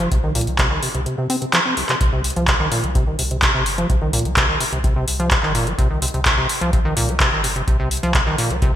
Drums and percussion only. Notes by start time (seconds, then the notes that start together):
0.12 kick, closed hi-hat
0.35 open hi-hat
0.41 closed hi-hat
0.47 closed hi-hat
0.58 kick, clap, closed hi-hat
0.83 open hi-hat
0.95 closed hi-hat
1.06 closed hi-hat
1.30 open hi-hat
1.42 closed hi-hat
1.53 clap, closed hi-hat
1.77 open hi-hat
1.89 clap, closed hi-hat
2.01 kick, closed hi-hat
2.24 open hi-hat
2.30 closed hi-hat
2.36 closed hi-hat
2.48 kick, clap, closed hi-hat
2.72 open hi-hat
2.84 closed hi-hat
2.95 kick, closed hi-hat
3.19 open hi-hat
3.31 closed hi-hat
3.42 kick, clap, closed hi-hat
3.66 open hi-hat
3.78 closed hi-hat
3.90 kick, closed hi-hat
4.13 open hi-hat
4.19 closed hi-hat
4.25 closed hi-hat
4.36 kick, clap, closed hi-hat
4.60 open hi-hat
4.73 closed hi-hat
4.84 kick, closed hi-hat
5.08 open hi-hat
5.20 closed hi-hat
5.31 kick, clap, closed hi-hat
5.43 clap
5.55 open hi-hat
5.67 closed hi-hat
5.78 kick, closed hi-hat
6.02 open hi-hat
6.08 closed hi-hat
6.14 closed hi-hat
6.25 kick, clap, closed hi-hat
6.49 open hi-hat
6.61 closed hi-hat
6.73 kick, closed hi-hat
6.97 open hi-hat
7.09 closed hi-hat
7.20 kick, clap, closed hi-hat
7.44 open hi-hat
7.56 closed hi-hat
7.67 kick, closed hi-hat
7.91 open hi-hat
7.97 closed hi-hat
8.03 closed hi-hat
8.14 kick, clap, closed hi-hat
8.38 open hi-hat
8.50 closed hi-hat
8.62 kick, closed hi-hat